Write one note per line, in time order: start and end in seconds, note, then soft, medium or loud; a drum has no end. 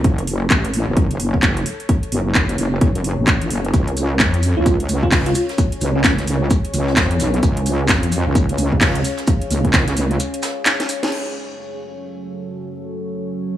0.00 3.74 A4 medium
0.00 11.12 C#5 medium
0.00 3.74 A5 medium
0.04 0.49 F#1 loud
0.04 kick loud
0.04 closed hi-hat medium
0.18 closed hi-hat soft
0.27 open hi-hat loud
0.50 0.85 A1 medium
0.50 kick loud
0.50 clap loud
0.50 closed hi-hat medium
0.65 closed hi-hat medium
0.74 open hi-hat loud
0.88 1.18 F#1 medium
0.97 kick loud
0.97 closed hi-hat medium
1.11 closed hi-hat soft
1.20 1.64 F#1 loud
1.20 open hi-hat loud
1.34 kick medium
1.43 kick loud
1.43 clap loud
1.43 closed hi-hat medium
1.57 closed hi-hat medium
1.66 open hi-hat loud
1.80 closed hi-hat soft
1.89 kick loud
1.89 closed hi-hat medium
2.03 closed hi-hat soft
2.12 2.57 F#1 medium
2.12 open hi-hat loud
2.35 kick loud
2.35 clap loud
2.35 closed hi-hat medium
2.49 closed hi-hat soft
2.58 2.80 F#1 medium
2.58 open hi-hat loud
2.81 3.16 F#1 medium
2.81 kick loud
2.81 closed hi-hat medium
2.95 closed hi-hat soft
3.04 open hi-hat loud
3.18 3.49 A1 medium
3.27 kick loud
3.27 clap loud
3.27 closed hi-hat medium
3.42 closed hi-hat medium
3.50 3.72 F#1 loud
3.50 open hi-hat loud
3.65 closed hi-hat soft
3.74 4.18 C#2 loud
3.74 11.82 C#4 medium
3.74 kick loud
3.74 closed hi-hat medium
3.74 shaker medium
3.88 11.12 G#4 medium
3.88 closed hi-hat soft
3.97 open hi-hat loud
3.97 shaker medium
4.20 4.55 F2 loud
4.20 kick loud
4.20 snare loud
4.20 clap loud
4.20 closed hi-hat medium
4.20 shaker medium
4.34 closed hi-hat medium
4.43 open hi-hat loud
4.43 shaker medium
4.57 4.88 C#2 loud
4.57 4.74 F4 medium
4.66 kick loud
4.66 closed hi-hat medium
4.66 shaker medium
4.80 closed hi-hat soft
4.89 5.34 C#2 loud
4.89 open hi-hat loud
4.89 shaker medium
5.03 5.09 F4 medium
5.03 kick medium
5.12 5.21 F4 medium
5.12 kick loud
5.12 snare loud
5.12 clap loud
5.12 closed hi-hat medium
5.12 open hi-hat medium
5.26 5.32 F4 medium
5.26 closed hi-hat soft
5.35 5.44 F4 medium
5.35 open hi-hat loud
5.35 shaker medium
5.49 snare medium
5.49 closed hi-hat soft
5.58 kick loud
5.58 closed hi-hat medium
5.58 shaker medium
5.72 closed hi-hat medium
5.81 6.26 C#2 medium
5.81 11.83 F5 medium
5.81 open hi-hat loud
5.81 shaker medium
5.95 6.01 C#4 medium
6.04 6.13 C#4 medium
6.04 kick loud
6.04 snare loud
6.04 clap loud
6.04 closed hi-hat medium
6.04 shaker medium
6.18 snare soft
6.18 closed hi-hat medium
6.27 6.49 C#2 loud
6.27 open hi-hat loud
6.27 shaker medium
6.50 kick loud
6.50 closed hi-hat medium
6.50 shaker medium
6.65 closed hi-hat medium
6.74 6.95 C#2 loud
6.74 open hi-hat loud
6.74 shaker medium
6.88 snare soft
6.97 7.18 F2 loud
6.97 kick loud
6.97 snare loud
6.97 clap loud
6.97 closed hi-hat medium
6.97 shaker medium
7.11 closed hi-hat medium
7.20 7.41 B1 loud
7.20 snare soft
7.20 open hi-hat loud
7.20 shaker medium
7.34 closed hi-hat soft
7.43 7.88 C#2 loud
7.43 kick loud
7.43 closed hi-hat medium
7.43 shaker medium
7.57 closed hi-hat medium
7.66 open hi-hat loud
7.66 shaker medium
7.88 8.24 F2 medium
7.88 kick loud
7.88 snare loud
7.88 clap loud
7.88 closed hi-hat medium
7.88 shaker medium
8.03 closed hi-hat medium
8.12 open hi-hat loud
8.12 shaker medium
8.26 8.57 C#2 medium
8.35 kick loud
8.35 closed hi-hat medium
8.35 shaker medium
8.49 closed hi-hat medium
8.58 9.03 C#2 loud
8.58 open hi-hat loud
8.58 shaker medium
8.72 kick medium
8.81 kick loud
8.81 snare loud
8.81 clap loud
8.81 closed hi-hat medium
8.81 open hi-hat medium
8.95 closed hi-hat medium
9.04 open hi-hat loud
9.04 shaker medium
9.17 snare medium
9.17 closed hi-hat soft
9.27 kick loud
9.27 closed hi-hat medium
9.27 shaker medium
9.41 closed hi-hat medium
9.51 9.95 C#2 medium
9.51 open hi-hat loud
9.51 shaker medium
9.65 kick medium
9.65 closed hi-hat soft
9.73 kick loud
9.73 snare loud
9.73 clap loud
9.73 closed hi-hat medium
9.73 shaker medium
9.87 snare soft
9.87 closed hi-hat medium
9.97 10.18 C#2 medium
9.97 open hi-hat loud
9.97 shaker medium
10.11 closed hi-hat soft
10.20 closed hi-hat medium
10.20 shaker medium
10.34 closed hi-hat medium
10.42 snare loud
10.42 open hi-hat loud
10.42 shaker medium
10.66 snare medium
10.66 clap loud
10.66 closed hi-hat medium
10.66 shaker medium
10.80 snare medium
10.80 closed hi-hat medium
10.89 open hi-hat loud
10.89 shaker medium
11.03 snare medium
11.03 closed hi-hat soft
11.12 13.57 F#3 medium
11.12 13.57 C#4 medium
11.12 13.57 F#4 medium
11.12 13.57 A4 medium
11.12 crash medium
11.28 13.57 C#5 medium
12.93 13.57 A5 medium